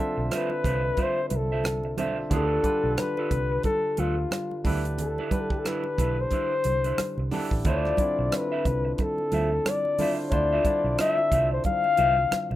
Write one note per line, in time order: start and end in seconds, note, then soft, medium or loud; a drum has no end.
0.00 1.97 D3 medium
0.00 0.98 C4 medium
0.00 1.98 D4 medium
0.00 1.98 F4 medium
0.00 0.29 A4 medium
0.00 2.00 C5 medium
0.00 2.00 E5 medium
0.17 0.29 B1 medium
0.17 muted clean electric guitar stroke soft
0.31 0.52 F4 medium
0.31 0.51 C5 medium
0.31 0.50 E5 medium
0.31 cross-stick medium
0.31 closed hi-hat medium
0.31 muted conga soft
0.31 high conga soft
0.36 1.05 B4 medium
0.50 muted clean electric guitar stroke soft
0.50 muted conga soft
0.64 0.91 C2 medium
0.64 0.81 F4 medium
0.64 0.82 C5 medium
0.64 0.82 E5 medium
0.64 kick medium
0.64 closed hi-hat medium
0.64 low conga soft
0.84 muted clean electric guitar stroke soft
0.97 1.19 F4 medium
0.97 1.19 C5 medium
0.97 1.20 E5 medium
0.97 kick medium
0.97 closed hi-hat medium
0.97 muted conga soft
0.97 high conga medium
1.03 1.28 C5 loud
1.29 1.98 C2 medium
1.29 1.38 B4 medium
1.29 muted clean electric guitar stroke soft
1.29 closed hi-hat medium
1.29 high conga medium
1.36 2.01 A4 medium
1.52 1.64 F4 soft
1.52 1.64 C5 soft
1.52 1.63 E5 medium
1.64 cross-stick loud
1.64 closed hi-hat medium
1.64 muted conga soft
1.64 high conga medium
1.83 muted clean electric guitar stroke soft
1.83 muted conga soft
1.97 2.24 B1 medium
1.97 2.24 D3 medium
1.97 2.25 D4 medium
1.97 2.19 F4 medium
1.97 2.25 F4 medium
1.97 2.18 C5 medium
1.97 2.25 C5 medium
1.97 2.17 E5 medium
1.97 2.25 E5 medium
1.97 closed hi-hat medium
1.97 high conga medium
1.97 low conga medium
2.18 muted clean electric guitar stroke soft
2.30 2.58 D2 medium
2.30 2.57 D3 medium
2.30 2.57 D4 medium
2.30 2.44 E4 medium
2.30 2.57 F4 medium
2.30 2.58 G4 medium
2.30 2.46 G#4 medium
2.30 2.58 A4 medium
2.30 2.46 A#4 medium
2.30 2.58 B4 medium
2.30 kick loud
2.30 closed hi-hat medium
2.30 muted conga soft
2.30 low conga medium
2.36 3.02 A4 medium
2.44 2.63 F4 medium
2.44 2.63 A4 medium
2.44 2.64 B4 medium
2.63 3.64 D3 medium
2.63 3.65 D4 medium
2.63 3.65 F4 medium
2.63 3.65 G4 medium
2.63 3.65 A4 medium
2.63 3.66 B4 medium
2.63 kick medium
2.63 closed hi-hat medium
2.63 high conga medium
2.84 2.95 B1 medium
2.84 muted clean electric guitar stroke soft
2.98 3.64 B4 loud
2.98 muted clean electric guitar stroke soft
2.98 cross-stick loud
2.98 closed hi-hat medium
2.98 muted conga soft
2.98 high conga soft
3.17 3.31 F4 medium
3.17 3.31 A4 medium
3.17 3.32 B4 medium
3.17 muted conga soft
3.31 3.57 C2 medium
3.31 muted clean electric guitar stroke soft
3.31 kick medium
3.31 closed hi-hat medium
3.31 low conga soft
3.50 muted clean electric guitar stroke soft
3.63 4.01 A4 medium
3.63 muted clean electric guitar stroke soft
3.63 kick medium
3.63 closed hi-hat medium
3.63 muted conga soft
3.63 high conga medium
3.97 4.25 D2 medium
3.97 4.15 F4 soft
3.97 4.66 F4 medium
3.97 4.15 A4 soft
3.97 4.16 B4 medium
3.97 closed hi-hat medium
3.97 high conga medium
4.17 muted clean electric guitar stroke soft
4.31 muted clean electric guitar stroke soft
4.31 cross-stick loud
4.31 closed hi-hat medium
4.31 high conga medium
4.51 muted conga soft
4.64 5.17 D2 medium
4.64 5.20 D3 medium
4.64 5.20 D4 medium
4.64 4.82 D4 soft
4.64 5.21 E4 medium
4.64 4.82 E4 medium
4.64 5.21 G4 medium
4.64 4.82 B4 medium
4.64 5.21 B4 medium
4.64 kick loud
4.64 open hi-hat medium
4.64 high conga medium
4.64 low conga medium
4.85 muted clean electric guitar stroke soft
4.85 closed hi-hat soft
4.98 5.32 A4 medium
4.98 muted clean electric guitar stroke soft
4.98 closed hi-hat medium
4.98 low conga medium
5.18 5.31 D4 medium
5.18 5.31 E4 medium
5.18 5.32 B4 medium
5.18 muted conga soft
5.31 6.32 D3 medium
5.31 6.32 D4 medium
5.31 6.32 E4 medium
5.31 6.33 G4 medium
5.31 5.42 B4 medium
5.31 6.33 B4 medium
5.31 muted clean electric guitar stroke soft
5.31 kick medium
5.31 closed hi-hat soft
5.31 high conga medium
5.41 5.53 A4 medium
5.50 5.60 G4 medium
5.50 muted fingered electric bass stroke soft
5.50 muted clean electric guitar stroke soft
5.50 kick medium
5.59 5.69 A4 medium
5.65 5.86 D4 medium
5.65 5.85 E4 medium
5.65 5.84 B4 medium
5.65 6.23 B4 medium
5.65 cross-stick medium
5.65 closed hi-hat medium
5.65 muted conga soft
5.65 high conga soft
5.84 muted clean electric guitar stroke soft
5.84 muted conga soft
5.98 6.25 B1 medium
5.98 6.15 D4 soft
5.98 6.16 E4 soft
5.98 6.16 B4 medium
5.98 kick medium
5.98 closed hi-hat medium
5.98 low conga medium
6.18 7.33 C5 loud
6.18 muted clean electric guitar stroke soft
6.31 6.53 D4 medium
6.31 6.53 E4 medium
6.31 6.53 B4 medium
6.31 kick medium
6.31 closed hi-hat medium
6.31 high conga medium
6.64 6.91 C2 medium
6.64 muted clean electric guitar stroke soft
6.64 closed hi-hat medium
6.64 high conga medium
6.84 6.97 D4 soft
6.84 6.97 E4 soft
6.84 6.96 B4 soft
6.84 closed hi-hat soft
6.98 muted fingered electric bass stroke soft
6.98 cross-stick loud
6.98 closed hi-hat medium
6.98 high conga medium
7.18 7.29 C2 medium
7.18 muted clean electric guitar stroke soft
7.18 muted conga soft
7.31 7.58 D3 medium
7.31 7.52 D4 medium
7.31 7.59 D4 medium
7.31 7.59 E4 medium
7.31 7.52 E4 medium
7.31 7.59 G4 medium
7.31 7.59 A4 medium
7.31 7.50 B4 medium
7.31 open hi-hat medium
7.31 high conga medium
7.31 low conga medium
7.51 7.62 A1 medium
7.51 muted clean electric guitar stroke soft
7.51 kick medium
7.65 7.91 D2 medium
7.65 7.91 D3 medium
7.65 7.92 D4 medium
7.65 7.92 E4 medium
7.65 7.97 F4 medium
7.65 7.93 F4 medium
7.65 7.97 C5 medium
7.65 7.93 C5 medium
7.65 7.97 E5 medium
7.65 kick loud
7.65 closed hi-hat medium
7.65 low conga medium
7.70 8.38 D5 medium
7.85 cross-stick soft
7.85 muted conga soft
7.97 8.99 D3 medium
7.97 8.99 D4 medium
7.97 9.00 E4 medium
7.97 9.00 F4 medium
7.97 kick medium
7.97 closed hi-hat medium
7.97 high conga medium
8.02 9.00 C4 medium
8.19 8.29 B1 medium
8.19 muted clean electric guitar stroke soft
8.32 muted clean electric guitar stroke soft
8.32 cross-stick loud
8.32 closed hi-hat medium
8.32 muted conga soft
8.32 high conga soft
8.37 8.95 B4 medium
8.52 8.64 F4 medium
8.52 8.65 C5 medium
8.52 8.65 E5 medium
8.65 8.92 C2 medium
8.65 muted clean electric guitar stroke soft
8.65 kick medium
8.65 closed hi-hat medium
8.65 low conga medium
8.85 muted clean electric guitar stroke soft
8.95 9.03 B4 medium
8.95 kick medium
8.95 closed hi-hat medium
8.99 9.71 A4 medium
8.99 muted clean electric guitar stroke soft
8.99 muted conga soft
8.99 high conga medium
9.18 muted conga soft
9.32 9.58 D2 medium
9.32 9.49 F4 medium
9.32 9.49 C5 medium
9.32 9.49 E5 medium
9.32 closed hi-hat medium
9.32 high conga medium
9.66 10.20 D5 medium
9.66 muted clean electric guitar stroke soft
9.66 cross-stick loud
9.66 closed hi-hat medium
9.66 muted conga soft
9.66 high conga medium
9.85 muted conga soft
9.98 10.25 D3 medium
9.98 10.25 D4 medium
9.98 10.25 E4 medium
9.98 10.16 F4 medium
9.98 10.26 F4 medium
9.98 10.16 C5 medium
9.98 10.26 C5 medium
9.98 10.16 E5 medium
9.98 open hi-hat medium
9.98 high conga medium
9.98 low conga medium
10.19 muted clean electric guitar stroke soft
10.28 10.58 D2 medium
10.28 10.57 D3 medium
10.28 10.58 D4 medium
10.28 10.58 E4 medium
10.28 10.58 F4 medium
10.28 10.36 C#5 medium
10.28 kick loud
10.28 closed hi-hat medium
10.28 muted conga soft
10.28 low conga medium
10.33 10.59 C5 medium
10.33 11.00 D5 medium
10.33 muted clean electric guitar stroke soft
10.53 10.64 F4 medium
10.53 10.65 C5 medium
10.53 10.65 E5 medium
10.65 11.65 D3 medium
10.65 11.66 D4 medium
10.65 11.66 E4 medium
10.65 11.66 F4 soft
10.65 11.67 D5 medium
10.65 muted clean electric guitar stroke soft
10.65 kick medium
10.65 closed hi-hat medium
10.65 high conga medium
10.84 10.95 B1 medium
10.84 muted clean electric guitar stroke soft
10.98 11.20 F4 medium
10.98 11.18 C5 medium
10.98 11.48 E5 loud
10.98 11.17 E5 medium
10.98 cross-stick loud
10.98 closed hi-hat medium
10.98 muted conga soft
10.98 high conga soft
11.18 muted clean electric guitar stroke soft
11.18 muted conga soft
11.31 11.58 C2 medium
11.31 11.48 F4 medium
11.31 11.49 C5 medium
11.31 11.49 E5 medium
11.31 kick medium
11.31 closed hi-hat medium
11.31 low conga medium
11.53 11.65 C5 medium
11.64 12.56 F5 loud
11.64 kick medium
11.64 closed hi-hat medium
11.64 muted conga soft
11.64 high conga medium
11.84 muted clean electric guitar stroke soft
11.84 muted conga soft
11.97 12.25 C2 medium
11.97 12.18 F4 medium
11.97 12.17 C5 medium
11.97 12.16 E5 medium
11.97 closed hi-hat medium
11.97 high conga medium
12.17 muted clean electric guitar stroke soft
12.31 muted fingered electric bass stroke soft
12.31 cross-stick loud
12.31 closed hi-hat medium
12.31 high conga medium
12.51 12.56 B1 medium
12.51 muted clean electric guitar stroke soft
12.51 muted conga soft